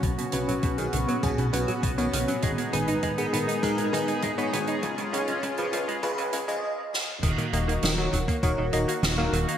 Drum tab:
CC |----------------|----------------|----------------|x---------------|
HH |xxxxxxxxxxxxxxxx|xxxxxxxxxxxxxxxx|xxxxxxxxxxxx----|xxxxx-xxx-xxx-xx|
SD |----------------|----------------|--------------o-|----o-------o---|
T2 |o--o--o-o--oo-o-|o-o-o-o-o-o-o-o-|oooooooooooo---o|-o--------------|
BD |o---o---o---o---|o---o---o---o---|o---o---o-------|o-----ooo-------|